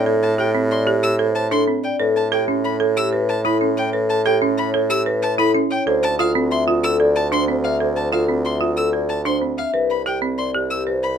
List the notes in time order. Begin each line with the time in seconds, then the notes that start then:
Already playing: A2 D5
0.06 A4
0.23 A5
0.38 G4 G5
0.55 C4
0.70 D5 C6
0.87 G4
1.02 G4 E6
1.19 A4 C5
1.35 A5
1.51 D4 A4 C6
1.68 C4
1.83 D5 G5
2.00 A2 A4 B4
2.16 A5
2.32 A4 G5
2.48 C#4
2.64 C#5 B5
2.80 A4
2.96 G4 E6
3.12 B4
3.29 A5
3.45 E4 A4 B5
3.61 C#4
3.77 C#5 G5
3.93 A4 B4
4.10 A5
4.25 G4 A4 G5
4.42 C#4
4.58 C#5 B5
4.74 A4
4.89 G4 E6
5.06 B4
5.22 A5
5.38 E4 A4 B5
5.54 C#4
5.71 C#5 G5
5.87 D2 A4 C5
6.03 A5
6.19 F4 A4 F5
6.35 C4
6.51 E5 C6
6.68 F4
6.83 A4 E6
7.00 A4 D5
7.16 A5
7.32 D4 C5 C6
7.48 C4
7.64 E5 F5
7.80 A4 C5
7.96 A5
8.12 F4 A4 F5
8.29 C4
8.45 E5 C6
8.61 F4
8.77 A4 E6
8.93 A4 D5
9.09 A5
9.25 D4 C5 C6
9.42 C4
9.57 E5 F5
9.74 C2 B4
9.90 B5
10.06 G4 G5
10.22 C4
10.38 D5 C6
10.54 G4
10.70 G4 E6
10.87 B4 C5
11.03 B5